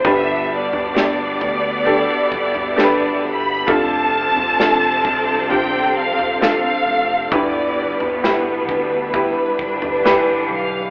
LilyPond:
<<
  \new Staff \with { instrumentName = "Violin section" } { \time 4/4 \key g \mixolydian \tempo 4 = 66 e''8 d''2. b''8 | a''2 g''8 f''8 f''4 | d''4 r2 r8 f''8 | }
  \new Staff \with { instrumentName = "Upright piano" } { \time 4/4 \key g \mixolydian <d' g' b'>4 <d' g' d''>4 <d' g' a'>4 <d' g' a' b'>4 | <d' f' a'>4 <d' f' a'>4 <d' f' g'>4 <d' f' a'>4 | <e' g' b'>4 <e' g' b'>4 <e' g' b'>4 <e g' b'>4 | }
  \new Staff \with { instrumentName = "Upright piano" } { \clef bass \time 4/4 \key g \mixolydian <g, d>4. r2 r8 | c4. r2 r8 | <g, d>4. r2 r8 | }
  \new Staff \with { instrumentName = "String section" } { \time 4/4 \key g \mixolydian << { d'2 e'2 | <f a'>1 | <g b'>1 | } \\ { <g b>1 | <c' d'>1 | <e d'>1 | } >> }
  \new Staff \with { instrumentName = "Cello section" } { \clef bass \time 4/4 \key g \mixolydian <b, b>1 | <c c'>1 | <b, b>2~ <b, b>8 <d d'>4. | }
  \new Staff \with { instrumentName = "Fretless electric bass" } { \clef bass \time 4/4 \key g \mixolydian g,,8. g,,8. d,8. r16 g,,4 g,,8 | f,,8. f,,8. c,2 f,,8 | g,,8. g,,8. d,8. r16 g,,4 b,,8 | }
  \new DrumStaff \with { instrumentName = "Drums" } \drummode { \time 4/4 <bd tomfh>8. tomfh16 sn8 <bd tomfh>8 tomfh8 bd16 tomfh16 sn4 | <bd tomfh>8. tomfh16 sn8 <bd tomfh>8 tomfh8. tomfh16 sn4 | <bd tomfh>8. tomfh16 sn8 <bd tomfh>8 bd8 bd16 tomfh16 sn4 | }
>>